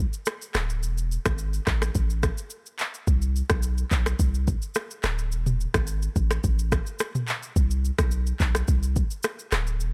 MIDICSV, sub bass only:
0, 0, Header, 1, 2, 480
1, 0, Start_track
1, 0, Tempo, 560748
1, 712, Time_signature, 4, 2, 24, 8
1, 8503, End_track
2, 0, Start_track
2, 0, Title_t, "Sub bass"
2, 0, Program_c, 0, 38
2, 471, Note_on_c, 0, 26, 99
2, 711, Note_on_c, 0, 28, 107
2, 724, Note_off_c, 0, 26, 0
2, 1012, Note_off_c, 0, 28, 0
2, 1078, Note_on_c, 0, 32, 83
2, 1370, Note_off_c, 0, 32, 0
2, 1431, Note_on_c, 0, 33, 99
2, 1629, Note_off_c, 0, 33, 0
2, 1670, Note_on_c, 0, 33, 103
2, 1972, Note_off_c, 0, 33, 0
2, 2631, Note_on_c, 0, 36, 109
2, 2933, Note_off_c, 0, 36, 0
2, 2998, Note_on_c, 0, 35, 96
2, 3291, Note_off_c, 0, 35, 0
2, 3350, Note_on_c, 0, 35, 88
2, 3549, Note_off_c, 0, 35, 0
2, 3590, Note_on_c, 0, 36, 105
2, 3892, Note_off_c, 0, 36, 0
2, 4314, Note_on_c, 0, 26, 104
2, 4552, Note_on_c, 0, 28, 105
2, 4565, Note_off_c, 0, 26, 0
2, 4853, Note_off_c, 0, 28, 0
2, 4919, Note_on_c, 0, 32, 86
2, 5211, Note_off_c, 0, 32, 0
2, 5272, Note_on_c, 0, 33, 96
2, 5470, Note_off_c, 0, 33, 0
2, 5512, Note_on_c, 0, 33, 107
2, 5813, Note_off_c, 0, 33, 0
2, 6472, Note_on_c, 0, 36, 109
2, 6773, Note_off_c, 0, 36, 0
2, 6838, Note_on_c, 0, 35, 94
2, 7130, Note_off_c, 0, 35, 0
2, 7191, Note_on_c, 0, 35, 88
2, 7390, Note_off_c, 0, 35, 0
2, 7432, Note_on_c, 0, 36, 104
2, 7733, Note_off_c, 0, 36, 0
2, 8152, Note_on_c, 0, 26, 100
2, 8395, Note_on_c, 0, 28, 105
2, 8407, Note_off_c, 0, 26, 0
2, 8503, Note_off_c, 0, 28, 0
2, 8503, End_track
0, 0, End_of_file